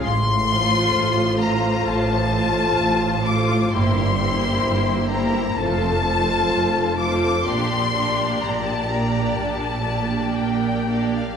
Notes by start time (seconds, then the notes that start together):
0.04 A1 A2 C6
0.50 A3 F4 C5
0.94 A1 A2
1.41 A3 F4 C5 A#5
1.86 A1 A2 A5
2.32 A3 F4 C5
2.79 A1 A2
3.25 A3 F4 C5 D6
3.71 G1 G2 A#3 E4 G4 C5 C6
4.18 A#3 E4 G4 C5
4.63 G1 G2
5.10 A#3 E4 G4 C5 A#5
5.57 F1 F2 A3 F4 A4 C5 A5
6.05 A3 F4 A4 C5
6.51 F1 F2
6.98 A3 F4 A4 C5 D6
7.46 A#1 A#2 A#3 D4 G4 D5 C6
7.94 A#3 D4 G4 D5
8.42 A#1 A#2 A#5
8.65 A5
8.89 A#3 D4 G4 D5 A#5
9.34 A#1 A#2 A5
9.84 A#3 D4 G4 D5
10.34 A#1 A#2 G5
10.87 A#3 D4 G4 D5
11.15 F5